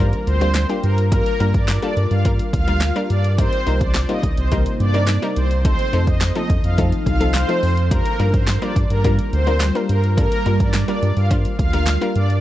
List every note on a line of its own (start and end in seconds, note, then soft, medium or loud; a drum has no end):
0.00 0.14 G2 loud
0.00 0.27 G3 medium
0.00 3.34 G3 medium
0.00 0.27 A#3 medium
0.00 0.27 D4 medium
0.00 0.27 F4 medium
0.00 3.34 F4 medium
0.00 3.34 A#4 medium
0.00 0.27 C5 medium
0.00 impact medium
0.13 closed hi-hat medium
0.27 0.66 D2 medium
0.27 0.48 C5 medium
0.27 closed hi-hat medium
0.41 0.60 G3 medium
0.41 0.60 A#3 medium
0.41 0.60 D4 medium
0.41 0.60 F4 medium
0.41 0.60 C5 medium
0.41 closed hi-hat medium
0.55 snare medium
0.55 clap loud
0.55 closed hi-hat loud
0.69 0.98 G3 medium
0.69 0.98 A#3 medium
0.69 0.98 D4 medium
0.69 0.98 F4 medium
0.69 0.98 G4 medium
0.69 closed hi-hat medium
0.83 1.22 G2 loud
0.83 0.94 A#4 medium
0.83 closed hi-hat medium
0.98 closed hi-hat medium
1.12 1.31 G3 medium
1.12 1.31 A#3 medium
1.12 1.31 D4 medium
1.12 1.31 F4 medium
1.12 1.33 A#4 loud
1.12 1.31 A#4 medium
1.12 kick loud
1.12 closed hi-hat loud
1.26 closed hi-hat medium
1.40 1.79 G2 medium
1.40 1.69 G3 medium
1.40 1.69 A#3 medium
1.40 1.69 D4 medium
1.40 1.69 F4 medium
1.40 1.69 A#4 medium
1.40 closed hi-hat medium
1.54 1.65 D5 medium
1.54 kick loud
1.54 closed hi-hat soft
1.68 snare medium
1.68 clap loud
1.68 closed hi-hat medium
1.82 2.11 G3 medium
1.82 2.11 A#3 medium
1.82 2.11 D4 medium
1.82 2.11 F4 medium
1.82 2.11 A4 medium
1.82 1.93 D5 medium
1.82 closed hi-hat medium
1.97 2.06 G2 medium
1.97 closed hi-hat medium
2.11 2.40 G2 loud
2.11 2.22 F5 medium
2.11 closed hi-hat soft
2.25 2.53 G3 medium
2.25 2.54 A#3 medium
2.25 2.54 D4 medium
2.25 2.54 F4 medium
2.25 2.54 A#4 medium
2.25 kick loud
2.25 closed hi-hat medium
2.39 closed hi-hat medium
2.53 2.92 D2 medium
2.53 2.75 F5 medium
2.53 kick medium
2.53 closed hi-hat medium
2.67 2.86 G3 medium
2.67 2.87 A#3 medium
2.67 2.87 D4 medium
2.67 2.87 F4 medium
2.67 2.87 A#4 medium
2.67 closed hi-hat medium
2.81 snare medium
2.81 clap loud
2.81 closed hi-hat loud
2.96 3.24 G3 medium
2.96 3.24 A#3 medium
2.96 3.24 D4 medium
2.96 3.24 F4 medium
2.96 3.24 A#4 medium
2.96 closed hi-hat medium
3.10 3.49 G2 medium
3.10 3.21 D5 medium
3.10 closed hi-hat medium
3.24 closed hi-hat medium
3.38 5.63 C3 medium
3.38 3.57 G3 medium
3.38 3.57 A#3 medium
3.38 5.63 A#3 medium
3.38 3.57 C4 medium
3.38 7.87 D#4 medium
3.38 3.57 D#4 medium
3.38 3.57 A#4 medium
3.38 3.60 C5 loud
3.38 kick loud
3.38 closed hi-hat loud
3.53 closed hi-hat medium
3.66 4.05 C2 medium
3.66 3.95 G3 medium
3.66 3.95 A#3 medium
3.66 3.95 C4 medium
3.66 3.95 D#4 medium
3.66 3.95 A#4 medium
3.66 closed hi-hat medium
3.81 3.92 D5 medium
3.81 kick loud
3.81 closed hi-hat medium
3.94 snare medium
3.94 clap loud
3.94 closed hi-hat medium
4.09 4.37 G3 medium
4.09 4.38 A#3 medium
4.09 4.38 C4 medium
4.09 4.38 D#4 medium
4.09 4.38 F4 medium
4.09 4.20 D#5 medium
4.09 closed hi-hat medium
4.23 4.33 C2 medium
4.23 kick loud
4.23 closed hi-hat medium
4.37 4.67 C2 loud
4.37 4.48 C5 medium
4.37 closed hi-hat soft
4.51 4.80 G3 medium
4.51 4.80 A#3 medium
4.51 4.80 C4 medium
4.51 4.80 D#4 medium
4.51 4.80 A#4 medium
4.51 kick loud
4.51 closed hi-hat medium
4.66 closed hi-hat medium
4.80 5.19 G2 medium
4.80 5.02 D5 medium
4.80 closed hi-hat medium
4.94 5.13 G3 medium
4.94 5.13 A#3 medium
4.94 5.13 C4 medium
4.94 5.13 D#4 medium
4.94 5.13 A#4 medium
4.94 closed hi-hat medium
5.07 snare medium
5.07 clap loud
5.07 closed hi-hat loud
5.22 5.51 G3 medium
5.22 5.51 A#3 medium
5.22 5.51 C4 medium
5.22 5.51 D#4 medium
5.22 5.51 A#4 medium
5.22 closed hi-hat medium
5.36 5.75 C2 medium
5.36 5.47 C5 medium
5.36 closed hi-hat medium
5.51 closed hi-hat medium
5.65 5.84 F3 medium
5.65 7.89 F3 medium
5.65 5.84 A3 medium
5.65 5.84 C4 medium
5.65 5.84 D#4 medium
5.65 7.89 A4 medium
5.65 5.84 A4 medium
5.65 5.86 C5 loud
5.65 kick loud
5.65 closed hi-hat loud
5.79 closed hi-hat medium
5.93 6.32 F2 medium
5.93 6.21 F3 medium
5.93 6.22 A3 medium
5.93 6.22 C4 medium
5.93 6.22 D#4 medium
5.93 6.22 A4 medium
5.93 closed hi-hat medium
6.07 6.18 D#5 medium
6.07 kick loud
6.07 closed hi-hat medium
6.21 snare medium
6.21 clap loud
6.21 closed hi-hat medium
6.35 6.64 F3 medium
6.35 6.64 A3 medium
6.35 6.64 C4 medium
6.35 6.64 D#4 medium
6.35 6.64 A4 medium
6.35 6.46 D#5 medium
6.35 closed hi-hat medium
6.50 6.59 F2 medium
6.50 kick loud
6.50 closed hi-hat medium
6.64 6.93 F2 loud
6.64 6.75 F5 medium
6.64 closed hi-hat medium
6.78 7.06 F3 medium
6.78 7.06 A3 medium
6.78 7.07 C4 medium
6.78 7.07 D#4 medium
6.78 7.07 A4 medium
6.78 kick loud
6.78 closed hi-hat medium
6.92 closed hi-hat medium
7.06 7.45 C2 medium
7.06 7.28 F5 medium
7.06 kick medium
7.06 closed hi-hat medium
7.20 7.39 F3 medium
7.20 7.39 A3 medium
7.20 7.39 C4 medium
7.20 7.40 D#4 medium
7.20 7.40 A4 medium
7.20 closed hi-hat medium
7.34 7.75 C5 medium
7.34 snare medium
7.34 clap loud
7.34 closed hi-hat loud
7.48 7.77 F3 medium
7.48 7.77 A3 medium
7.48 7.77 C4 medium
7.48 7.77 D#4 medium
7.48 7.77 A4 medium
7.48 closed hi-hat medium
7.63 8.02 F2 medium
7.63 open hi-hat medium
7.77 closed hi-hat medium
7.91 8.10 G3 medium
7.91 12.40 G3 medium
7.91 8.10 A#3 medium
7.91 8.10 D4 medium
7.91 12.40 F4 medium
7.91 8.10 F4 medium
7.91 12.40 A#4 medium
7.91 8.13 A#4 loud
7.91 8.10 A#4 medium
7.91 kick loud
7.91 closed hi-hat loud
8.05 closed hi-hat medium
8.19 8.58 G2 medium
8.19 8.48 G3 medium
8.19 8.48 A#3 medium
8.19 8.48 D4 medium
8.19 8.48 F4 medium
8.19 8.48 A#4 medium
8.19 closed hi-hat medium
8.34 8.45 C5 medium
8.34 kick loud
8.34 closed hi-hat medium
8.47 snare medium
8.47 clap loud
8.47 closed hi-hat medium
8.62 8.90 G3 medium
8.62 8.90 A#3 medium
8.62 8.90 D4 medium
8.62 8.91 F4 medium
8.62 8.91 A#4 medium
8.62 8.73 D5 medium
8.62 closed hi-hat medium
8.76 8.86 G2 medium
8.76 kick loud
8.76 closed hi-hat medium
8.90 9.19 G2 loud
8.90 9.01 A#4 medium
8.90 closed hi-hat soft
9.04 9.33 G3 medium
9.04 9.33 A#3 medium
9.04 9.33 D4 medium
9.04 9.33 F4 medium
9.04 9.33 A#4 medium
9.04 kick loud
9.04 closed hi-hat medium
9.19 closed hi-hat medium
9.33 9.71 D2 medium
9.33 9.54 C5 medium
9.33 closed hi-hat medium
9.47 9.66 G3 medium
9.47 9.66 A#3 medium
9.47 9.66 D4 medium
9.47 9.66 F4 medium
9.47 9.66 A#4 medium
9.47 closed hi-hat medium
9.60 snare medium
9.60 clap loud
9.60 closed hi-hat loud
9.75 10.04 G3 medium
9.75 10.04 A#3 medium
9.75 10.04 D4 medium
9.75 10.04 F4 medium
9.75 10.04 A#4 medium
9.75 closed hi-hat medium
9.89 10.28 G2 medium
9.89 10.00 A#4 medium
9.89 closed hi-hat medium
10.04 closed hi-hat medium
10.17 10.36 G3 medium
10.17 10.36 A#3 medium
10.17 10.37 D4 medium
10.17 10.37 F4 medium
10.17 10.37 A4 medium
10.17 10.39 A#4 loud
10.17 kick loud
10.17 closed hi-hat loud
10.32 closed hi-hat medium
10.46 10.85 G2 medium
10.46 10.74 G3 medium
10.46 10.74 A#3 medium
10.46 10.74 D4 medium
10.46 10.74 F4 medium
10.46 10.75 A#4 medium
10.46 closed hi-hat medium
10.60 10.71 D5 medium
10.60 kick loud
10.60 closed hi-hat soft
10.74 snare medium
10.74 clap loud
10.74 closed hi-hat medium
10.88 11.17 G3 medium
10.88 11.17 A#3 medium
10.88 11.17 D4 medium
10.88 11.17 F4 medium
10.88 11.17 A#4 medium
10.88 10.99 D5 medium
10.88 closed hi-hat medium
11.02 11.12 G2 medium
11.02 closed hi-hat medium
11.17 11.46 G2 loud
11.17 11.27 F5 medium
11.17 closed hi-hat soft
11.30 11.59 G3 medium
11.30 11.59 A#3 medium
11.30 11.59 D4 medium
11.30 11.59 F4 medium
11.30 11.59 C5 medium
11.30 kick medium
11.30 closed hi-hat medium
11.45 closed hi-hat medium
11.59 11.98 D2 medium
11.59 11.81 F5 medium
11.59 kick medium
11.59 closed hi-hat medium
11.73 11.92 G3 medium
11.73 11.92 A#3 medium
11.73 11.92 D4 medium
11.73 11.92 F4 medium
11.73 11.92 A#4 medium
11.73 closed hi-hat medium
11.87 snare medium
11.87 clap loud
11.87 closed hi-hat loud
12.01 12.30 G3 medium
12.01 12.30 A#3 medium
12.01 12.30 D4 medium
12.01 12.30 F4 medium
12.01 12.30 A#4 medium
12.01 closed hi-hat medium
12.16 12.41 G2 medium
12.16 12.26 D5 medium
12.16 closed hi-hat medium
12.30 closed hi-hat medium